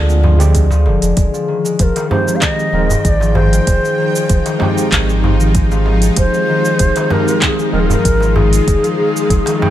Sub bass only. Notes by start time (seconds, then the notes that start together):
Already playing: D2
0.71 D2
0.87 F1
1.02 F1
1.17 F1
1.80 F1
2.73 D#1
3.05 G#1
3.68 F1
4.30 F1
4.92 G#1
6.17 F1
6.80 F1
7.73 D#1
8.05 G#1
8.67 F1
9.30 F1